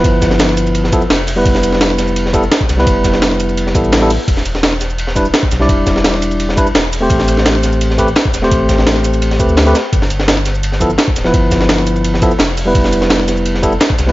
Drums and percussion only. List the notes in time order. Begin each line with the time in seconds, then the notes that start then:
0.04 kick, closed hi-hat, ride
0.22 kick, snare, closed hi-hat, ride, shaker
0.31 snare
0.39 snare, closed hi-hat, ride
0.49 snare
0.57 closed hi-hat, ride, shaker
0.67 ride, shaker
0.75 closed hi-hat, ride
0.84 snare
0.92 kick, closed hi-hat, ride, shaker
1.02 shaker
1.10 snare, closed hi-hat, ride
1.27 closed hi-hat, open hi-hat, shaker
1.46 kick, closed hi-hat, ride
1.54 snare
1.63 closed hi-hat, ride, shaker
1.72 snare
1.81 snare, closed hi-hat, ride
1.90 snare
1.98 snare, closed hi-hat, ride, shaker
2.08 shaker
2.16 closed hi-hat, ride
2.26 snare
2.34 kick, closed hi-hat, ride, shaker
2.43 shaker
2.52 snare, closed hi-hat, ride
2.61 kick
2.69 snare, closed hi-hat, ride, shaker
2.79 snare
2.87 kick, closed hi-hat, ride
3.04 kick, snare, closed hi-hat, ride, shaker
3.13 snare
3.22 snare, closed hi-hat, ride
3.31 snare
3.40 closed hi-hat, ride, shaker
3.49 ride, shaker
3.57 closed hi-hat, ride
3.67 snare
3.74 kick, closed hi-hat, ride, shaker
3.84 shaker
3.92 snare, closed hi-hat, ride
4.02 snare
4.10 closed hi-hat, open hi-hat, shaker
4.28 kick, closed hi-hat, ride
4.37 snare
4.45 closed hi-hat, ride, shaker
4.55 snare
4.63 snare, closed hi-hat, ride
4.72 snare
4.81 snare, closed hi-hat, ride, shaker
4.90 shaker
4.98 closed hi-hat, ride
5.07 snare
5.16 kick, closed hi-hat, ride, shaker
5.25 shaker
5.34 snare, closed hi-hat, ride
5.43 kick
5.51 snare, closed hi-hat, ride, shaker
5.61 snare
5.69 kick, closed hi-hat, ride
5.86 kick, snare, closed hi-hat, ride, shaker
5.96 snare
6.04 snare, closed hi-hat, ride
6.14 snare
6.22 closed hi-hat, ride, shaker
6.31 ride, shaker
6.40 closed hi-hat, ride
6.49 snare
6.57 kick, closed hi-hat, ride, shaker
6.67 shaker
6.75 snare, closed hi-hat, ride
6.93 closed hi-hat, open hi-hat, shaker
7.10 kick, closed hi-hat, ride
7.18 snare
7.28 closed hi-hat, ride, shaker
7.37 snare
7.46 snare, closed hi-hat, ride
7.55 snare
7.63 snare, closed hi-hat, ride, shaker
7.73 shaker
7.81 closed hi-hat, ride
7.90 snare
7.99 kick, closed hi-hat, ride, shaker
8.08 shaker
8.16 snare, closed hi-hat, ride
8.25 kick
8.34 snare, closed hi-hat, ride, shaker
8.43 snare
8.51 kick, closed hi-hat, ride
8.69 kick, snare, closed hi-hat, ride, shaker
8.78 snare
8.87 snare, closed hi-hat, ride
8.96 snare
9.04 closed hi-hat, ride, shaker
9.14 closed hi-hat, ride, shaker
9.22 closed hi-hat, ride
9.31 snare, closed hi-hat
9.40 kick, closed hi-hat, ride, shaker
9.49 shaker
9.57 snare, closed hi-hat, ride
9.67 snare, closed hi-hat
9.75 snare, closed hi-hat, ride, shaker
9.93 kick, closed hi-hat, ride
10.02 snare
10.10 closed hi-hat, ride, shaker
10.19 snare
10.28 snare, closed hi-hat, ride
10.37 snare
10.46 snare, closed hi-hat, ride, shaker
10.55 shaker
10.63 closed hi-hat, ride
10.72 snare
10.81 kick, closed hi-hat, ride, shaker
10.90 shaker
10.98 snare, closed hi-hat, ride
11.08 kick
11.16 snare, closed hi-hat, ride, shaker
11.24 snare
11.34 kick, closed hi-hat, ride
11.51 kick, snare, closed hi-hat, ride, shaker
11.60 snare
11.69 snare, closed hi-hat, ride
11.78 snare
11.87 closed hi-hat, ride, shaker
11.96 ride, shaker
12.04 closed hi-hat, ride
12.14 snare
12.22 kick, closed hi-hat, ride, shaker
12.31 shaker
12.39 snare, closed hi-hat, ride
12.57 closed hi-hat, open hi-hat, shaker
12.75 kick, closed hi-hat, ride
12.84 snare
12.92 closed hi-hat, ride, shaker
13.01 snare
13.10 snare, closed hi-hat, ride
13.20 snare
13.28 snare, closed hi-hat, ride, shaker
13.37 shaker
13.45 closed hi-hat, ride
13.54 snare
13.63 kick, closed hi-hat, ride, shaker
13.72 shaker
13.80 snare, closed hi-hat, ride
13.90 kick
13.98 snare, closed hi-hat, ride, shaker
14.08 snare